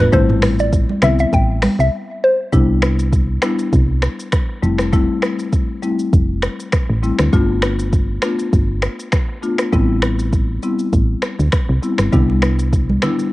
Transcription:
Already playing: marimba A3 B3 D4 F4
0.00 synth pluck B4
0.12 fm bass A1, marimba G3 A3 C4 E4, synth pluck C5, kick, low conga, shaker
0.29 mid tom, high conga
0.42 finger snap, cross-stick, open hi-hat, shaker
0.59 synth pluck D5, shaker
0.73 kick, shaker
0.89 high conga
1.02 fm bass C2, marimba G3 B3 C4 E4, synth pluck E5, finger snap, cross-stick, low conga, shaker
1.19 synth pluck E5, shaker
1.33 fm bass A1, synth pluck G5, kick, shaker
1.62 finger snap, cross-stick, open hi-hat, high conga, shaker
1.79 fm bass C2, synth pluck E5, shaker
2.24 synth pluck C5
2.52 fm bass C2, marimba G3 B3 D4 E4, kick, shaker
2.82 finger snap, cross-stick, shaker
2.99 shaker
3.13 kick, shaker
3.42 marimba G3 B3 D4 E4, finger snap, cross-stick, shaker
3.59 shaker
3.73 fm bass C2, kick, shaker
4.02 finger snap, cross-stick, shaker
4.20 shaker
4.32 finger snap, kick, cross-stick, shaker
4.62 fm bass F1, marimba G3 A3 C4 E4, shaker
4.78 finger snap, cross-stick, shaker
4.93 marimba G3 A3 C4 E4, kick, shaker
5.22 finger snap, cross-stick, shaker
5.39 shaker
5.53 kick, shaker
5.83 marimba G3 A3 C4 E4, shaker
5.99 shaker
6.13 fm bass F1, kick, shaker
6.42 finger snap, cross-stick, shaker
6.60 shaker
6.72 finger snap, kick, cross-stick, shaker
6.89 fm bass A1
7.03 marimba G3 A3 C4 E4, shaker
7.18 fm bass D2, finger snap, cross-stick, shaker
7.33 fm bass G1, marimba A3 B3 D4 F4, kick, shaker
7.62 finger snap, cross-stick, shaker
7.79 shaker
7.93 kick, shaker
8.22 marimba A3 B3 D4 F4, finger snap, cross-stick, shaker
8.39 shaker
8.53 fm bass G1, kick, shaker
8.82 finger snap, cross-stick, shaker
9.00 shaker
9.12 finger snap, kick, cross-stick, shaker
9.42 marimba A3 B3 D4 F4, shaker
9.58 finger snap, cross-stick, shaker
9.73 fm bass A1, marimba G3 B3 C4 E4, kick, shaker
10.02 finger snap, cross-stick, shaker
10.19 shaker
10.33 kick, shaker
10.63 marimba G3 B3 C4 E4, shaker
10.79 shaker
10.93 fm bass A1, kick, shaker
11.22 finger snap, cross-stick, shaker
11.39 fm bass D2, shaker
11.52 finger snap, kick, cross-stick, shaker
11.69 fm bass C2
11.83 marimba G3 B3 C4 E4, shaker
11.98 fm bass G1, finger snap, cross-stick, shaker
12.13 fm bass C2, marimba G3 B3 D4 E4, kick, low conga, shaker
12.30 high conga
12.42 finger snap, cross-stick, shaker
12.59 shaker
12.73 kick, shaker
12.90 high conga
13.02 marimba G3 B3 D4 E4, finger snap, cross-stick, low conga, shaker
13.19 shaker

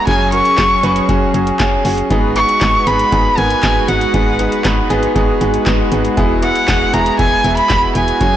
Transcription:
0.07 fm bass F#1, analog synth pad F#3 C#4 G#4, grand piano C#4 F#4 G#4, erhu G#5, kick, closed hi-hat
0.32 grand piano C#4 F#4 A#4, erhu C#6, closed hi-hat
0.45 closed hi-hat
0.58 fm bass F#1, grand piano C#4 F#4 G#4, kick, snare, clap, closed hi-hat
0.83 fm bass F#1, grand piano C#4 F#4 B4, closed hi-hat
0.96 closed hi-hat
1.09 fm bass F#1, grand piano C#4 F#4 G#4, kick, closed hi-hat
1.34 fm bass F#1, grand piano C#4 F#4 G#4, closed hi-hat
1.47 closed hi-hat
1.60 fm bass F#1, grand piano C#4 F#4 G#4 G#5, kick, snare, clap, closed hi-hat
1.85 fm bass F#1, grand piano C#4 F#4 G#4 F#5, open hi-hat
1.98 closed hi-hat
2.10 fm bass G#1, analog synth pad G#3 F#4 B4, grand piano B3 D#4 G#4, kick, closed hi-hat
2.36 grand piano B3 D#4 G#4, erhu C#6, closed hi-hat
2.49 closed hi-hat
2.61 fm bass G#1, grand piano B3 D#4 G#4, kick, snare, clap, closed hi-hat
2.87 fm bass G#1, grand piano B3 D#4 G#4, erhu B5, closed hi-hat
2.99 closed hi-hat
3.12 fm bass G#1, grand piano B3 D#4 G#4, kick, closed hi-hat
3.38 fm bass G#1, grand piano B3 D#4 A#4, erhu G#5, closed hi-hat
3.50 closed hi-hat
3.63 fm bass G#1, grand piano B3 D#4 G#4, kick, snare, clap, closed hi-hat
3.88 fm bass G#1, grand piano B3 D#4 F#4, erhu F#5, closed hi-hat
4.01 closed hi-hat
4.14 fm bass G#1, grand piano B3 D#4 G#4, kick, closed hi-hat
4.39 grand piano B3 D#4 G#4, closed hi-hat
4.52 closed hi-hat
4.65 fm bass G#1, grand piano B3 D#4 B4, kick, snare, clap, closed hi-hat
4.90 fm bass G#1, grand piano B3 D#4 G#4, closed hi-hat
5.03 closed hi-hat
5.16 fm bass G#1, grand piano B3 D#4 G#4, kick, closed hi-hat
5.41 fm bass G#1, grand piano B3 D#4 G#4, closed hi-hat
5.54 closed hi-hat
5.66 fm bass G#1, grand piano B3 D#4 G#4, kick, snare, clap, closed hi-hat
5.92 fm bass G#1, grand piano B3 D#4 G#4, closed hi-hat
6.05 closed hi-hat
6.17 fm bass E1, grand piano B3 E4 G#4, analog synth pad E4, kick, closed hi-hat
6.43 grand piano B3 E4 G#4, erhu F#5, closed hi-hat
6.55 closed hi-hat
6.68 fm bass E1, grand piano B3 E4 G#4, kick, snare, clap, closed hi-hat
6.93 fm bass E1, grand piano B3 E4 G#4, erhu A#5, closed hi-hat
7.06 closed hi-hat
7.19 fm bass E1, grand piano B3 E4 G#4, erhu G#5, kick, closed hi-hat
7.44 fm bass E1, grand piano B3 E4 G#4, closed hi-hat
7.57 erhu B5, closed hi-hat
7.70 fm bass E1, grand piano B3 E4 G#4, kick, snare, clap, closed hi-hat
7.95 fm bass E1, grand piano B3 E4 G#4, erhu G#5, closed hi-hat
8.08 closed hi-hat
8.21 fm bass F#1, analog synth pad F#3 C#4 G#4, grand piano C#4 F#4 G#4, kick, closed hi-hat

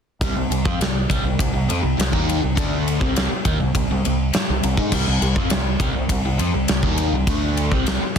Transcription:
0.21 fingered electric bass C2, overdriven electric guitar C3 G3, kick, ride
0.36 fingered electric bass C2, overdriven electric guitar C3 G3
0.50 fingered electric bass C2, overdriven electric guitar C3 G3, ride
0.65 fingered electric bass F2, overdriven electric guitar F3 C4, kick
0.79 fingered electric bass C2, overdriven electric guitar C3 G3, snare, ride
1.10 fingered electric bass C2, overdriven electric guitar C3 G3, kick, ride
1.24 fingered electric bass C2, overdriven electric guitar C3 G3
1.39 fingered electric bass C2, overdriven electric guitar C3 G3, kick, ride
1.54 fingered electric bass C2, overdriven electric guitar C3 G3
1.69 fingered electric bass F2, overdriven electric guitar F3 C4, ride
1.83 fingered electric bass C2, overdriven electric guitar C3 G3
1.97 fingered electric bass C2, overdriven electric guitar C3 G3, snare, ride
2.12 fingered electric bass D#2, overdriven electric guitar D#3 A#3 D#4, kick
2.29 ride
2.42 fingered electric bass C2, overdriven electric guitar C3 G3
2.55 fingered electric bass D2, overdriven electric guitar D3 A3 D4, kick, ride
2.88 ride
3.00 fingered electric bass C2, overdriven electric guitar C3 G3 C4, kick
3.16 snare, ride
3.31 muted overdriven electric guitar stroke
3.45 fingered electric bass D#2, overdriven electric guitar D#3 A#3, kick, ride
3.60 fingered electric bass C2, overdriven electric guitar C3 G3
3.75 fingered electric bass C2, overdriven electric guitar C3 G3, kick, ride
3.90 fingered electric bass C2, overdriven electric guitar C3 G3
4.05 fingered electric bass C2, overdriven electric guitar C3 G3, ride
4.33 muted overdriven electric guitar stroke, snare, ride
4.49 fingered electric bass C2, overdriven electric guitar C3 G3
4.63 fingered electric bass C2, overdriven electric guitar C3 G3, ride
4.77 fingered electric bass G#2, overdriven electric guitar G#3 D#4, kick
4.92 fingered electric bass C2, overdriven electric guitar C3 G3, kick, crash
5.07 fingered electric bass C2, overdriven electric guitar C3 G3
5.22 fingered electric bass C2, overdriven electric guitar C3 G3, ride
5.36 fingered electric bass F2, overdriven electric guitar F3 C4, kick
5.50 fingered electric bass C2, overdriven electric guitar C3 G3, snare, ride
5.80 fingered electric bass C2, overdriven electric guitar C3 G3, kick, ride
5.95 fingered electric bass C2, overdriven electric guitar C3 G3
6.09 fingered electric bass C2, overdriven electric guitar C3 G3, kick, ride
6.25 fingered electric bass C2, overdriven electric guitar C3 G3
6.38 fingered electric bass F2, overdriven electric guitar F3 C4, ride
6.54 fingered electric bass C2, overdriven electric guitar C3 G3
6.68 fingered electric bass C2, overdriven electric guitar C3 G3, snare, ride
6.83 fingered electric bass D#2, overdriven electric guitar D#3 A#3 D#4, kick
6.98 ride
7.12 fingered electric bass C2, overdriven electric guitar C3 G3
7.27 fingered electric bass D2, overdriven electric guitar D3 A3 D4, kick, ride
7.57 ride
7.72 fingered electric bass C2, overdriven electric guitar C3 G3 C4, kick
7.87 snare, ride
8.02 muted fingered electric bass stroke, muted overdriven electric guitar stroke

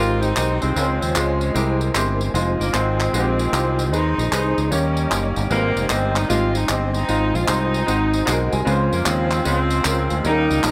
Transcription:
Already playing: fingered electric bass G#1, grand piano G#3 C4 D#4 G4, tonewheel organ D#4 G4 C5 G5, saxophone section F4
0.00 saxophone section C4, grand piano A#4
0.21 saxophone section D#4, tambourine
0.35 fingered electric bass B1, grand piano G#3 C4 D#4 G4 A#4, saxophone section D#4, clap, tambourine
0.42 grand piano C5
0.61 fingered electric bass C2, saxophone section F3 G#3 C4, tambourine
0.76 fingered electric bass C#2, grand piano C#3 G#3 C4 C#4 F4 A#4, tonewheel organ F4 C5 C#5 G#5, tambourine
0.82 grand piano C5
1.01 fingered electric bass D#2, saxophone section C4, tambourine
1.15 fingered electric bass C#2, saxophone section C3 F3 G#3, grand piano G#3 C4 C#4 F4 C5, clap, tambourine
1.41 tambourine
1.54 fingered electric bass C2, grand piano C3 G#3 C4 E4 G4 A#4, tonewheel organ E4 A#4 G#5, tambourine
1.81 tambourine
1.94 fingered electric bass G1, grand piano G#3 C4 E4 G4 C5, clap, tambourine
2.21 tambourine
2.34 fingered electric bass F1, grand piano G#3 C4 D#4 F4 C5, tonewheel organ F4 D#5, tambourine
2.60 fingered electric bass G1, saxophone section A#3, tambourine
2.73 fingered electric bass G#1, saxophone section D#3 G#3 C4, grand piano G#3 C4 D#4 F4 C5, clap, tambourine
3.00 clap, tambourine
3.13 fingered electric bass A#1, saxophone section D#3 G#3 C4, grand piano G#3 C4 D#4 F4 F#4, tambourine
3.20 grand piano G4
3.39 tambourine
3.52 fingered electric bass C2, grand piano G#3 C4 D#4 F4 G4, clap, tambourine
3.79 tambourine
3.91 fingered electric bass D#2, grand piano D#3 D#4 G#4 B4, saxophone section G#3 C4 D#4, tonewheel organ G#4 D#5 C6, tambourine
3.98 grand piano C5
4.18 fingered electric bass A#1, tambourine
4.32 fingered electric bass C2, saxophone section G#3 C4 D#4, grand piano D#4 G#4 B4, clap, tambourine
4.38 grand piano C5
4.58 fingered electric bass C#2, tambourine
4.70 fingered electric bass D#2, grand piano D#3 A#3 C#4 D#4 G4 C#5, tonewheel organ G3 C#5 A#5, saxophone section G3 A#3 C#4, tambourine
4.97 tambourine
5.10 fingered electric bass F#1, grand piano A#3 C#4 D#4 G4 C5, clap, tambourine
5.16 grand piano C#5
5.36 fingered electric bass G1, tambourine
5.50 fingered electric bass G#1, grand piano G#2 G#3 C4 D#4 G4 B4, saxophone section D#3 G3 A#3, tonewheel organ C5 G#5, tambourine
5.57 grand piano C5
5.76 fingered electric bass F1, tambourine
5.89 fingered electric bass G1, grand piano G#3 B3 D#4 G4 D#5, saxophone section C4, clap, tambourine
5.95 grand piano C4
6.16 saxophone section D#4, clap, tambourine
6.29 fingered electric bass G#1, grand piano G#3 A#3 D#4 G4 D#5, saxophone section C4 F4, tambourine
6.34 grand piano C4
6.55 saxophone section D#4, tambourine
6.68 fingered electric bass G1, grand piano G#3 C4 D#4 G4 D#5, saxophone section C4, clap, tambourine
6.93 saxophone section C4 D#4, tambourine
7.08 fingered electric bass G#1, grand piano G#2 G#3 C4 D#4 F4 C5, tonewheel organ F4, tambourine
7.33 fingered electric bass A#1, saxophone section F4, tambourine
7.47 fingered electric bass C2, grand piano G#3 C4 D#4 F4 C5, saxophone section C4 D#4, clap, tambourine
7.74 tambourine
7.86 fingered electric bass G#1, grand piano G#2 G#3 C4 D#4 F#4 C5, tonewheel organ F#4 C5 D#5, tambourine
8.13 grand piano D#5, tambourine
8.26 fingered electric bass B1, grand piano G#3 C4 D#4 F#4 G#4 F#5, clap, tambourine
8.32 grand piano A#4
8.52 fingered electric bass C2, grand piano G#5, tambourine
8.65 fingered electric bass C#2, grand piano C#3 G#3 C4 C#4 F4 B4, tonewheel organ F4 F5, tambourine
8.71 grand piano C5
8.92 fingered electric bass F2, saxophone section A#3, tambourine
9.05 fingered electric bass D#2, saxophone section F3 G#3 C4, grand piano G#3 C4 C#4 F4 D#5, clap, tambourine
9.31 clap, tambourine
9.44 fingered electric bass C#2, saxophone section F3 G#3 C4, grand piano G#3 C4 C#4 F4 C5, tambourine
9.70 tambourine
9.84 fingered electric bass C#2, grand piano G#3 C4 C#4 F4 A#4, clap, tambourine
10.10 fingered electric bass D2, tambourine
10.23 fingered electric bass D#2, grand piano D#3 G3 A#3 C#4 D#4 G#4, saxophone section G3 A#3 D#4, tonewheel organ D#4 A#4 G5, tambourine
10.30 grand piano A#4
10.50 fingered electric bass C#2, tambourine
10.63 fingered electric bass A#1, grand piano G3 A#3 C#4 D#4 A4, saxophone section G3 A#3 D#4, clap, tambourine

